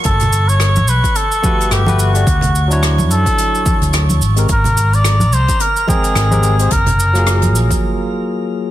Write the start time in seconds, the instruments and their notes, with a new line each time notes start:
Already playing: synth texture C#6
0.03 fretless electric bass G1, muted trumpet A4, kick, closed hi-hat, cabasa
0.19 closed hi-hat, low conga, cabasa
0.33 cabasa
0.48 muted trumpet C#5, cabasa
0.60 cross-stick, closed hi-hat, cabasa
0.76 high conga, cabasa
0.87 fretless electric bass B1, muted trumpet B4, cabasa
1.04 kick, closed hi-hat, cabasa
1.15 muted trumpet A4, closed hi-hat, cabasa
1.32 cabasa
1.42 tine electric piano A3 F#4 G4 B4, kick, high conga, cabasa
1.60 closed hi-hat, cabasa
1.71 fretless electric bass G1, muted trumpet G4, cross-stick, closed hi-hat, cabasa
1.86 tine electric piano A3 F#4 G4 B4, high conga, cabasa
1.99 muted trumpet F#4, cabasa
2.14 tine electric piano A3 F#4 G4 D5, closed hi-hat, cabasa
2.27 fretless electric bass D2, kick, closed hi-hat, cabasa
2.41 closed hi-hat, low conga, cabasa
2.55 cabasa
2.68 tine electric piano F#3 D4 E4, cabasa
2.73 tine electric piano C#5
2.83 cross-stick, closed hi-hat, cabasa
2.99 high conga, cabasa
3.10 fretless electric bass F#2, muted trumpet A4, cabasa
3.26 kick, closed hi-hat, cabasa
3.38 closed hi-hat, cabasa
3.55 cabasa
3.66 kick, high conga, cabasa
3.81 fretless electric bass D2, closed hi-hat, cabasa
3.93 cross-stick, closed hi-hat, cabasa
4.09 high conga, cabasa
4.21 fretless electric bass G#1, synth texture A#5, cabasa
4.36 tine electric piano G#3 C4 G4 A#4, closed hi-hat, cabasa
4.49 fretless electric bass G#1, muted trumpet A#4, kick, closed hi-hat, cabasa
4.64 closed hi-hat, low conga, cabasa
4.77 cabasa
4.93 muted trumpet D5, cabasa
5.04 cross-stick, closed hi-hat, cabasa
5.20 high conga, cabasa
5.32 fretless electric bass C2, muted trumpet C5, cabasa
5.48 kick, closed hi-hat, cabasa
5.60 muted trumpet A#4, closed hi-hat, cabasa
5.76 cabasa
5.87 tine electric piano G#3 C4 A#4 G5, muted trumpet G#4, kick, high conga, cabasa
6.04 closed hi-hat, cabasa
6.15 fretless electric bass G#1, cross-stick, closed hi-hat, cabasa
6.31 tine electric piano G#3 C4 G4 A#4, high conga, cabasa
6.43 cabasa
6.59 tine electric piano G#3 C4 G4 C5, closed hi-hat, cabasa
6.70 fretless electric bass F#1, muted trumpet A#4, kick, closed hi-hat, cabasa
6.86 closed hi-hat, low conga, cabasa
7.00 cabasa
7.13 tine electric piano F#3 A#3 F4, cross-stick, closed hi-hat, cabasa
7.19 tine electric piano G#4
7.26 cross-stick, closed hi-hat, cabasa
7.42 closed hi-hat, high conga, cabasa
7.55 fretless electric bass A#1, cabasa
7.70 kick, closed hi-hat, high conga, cabasa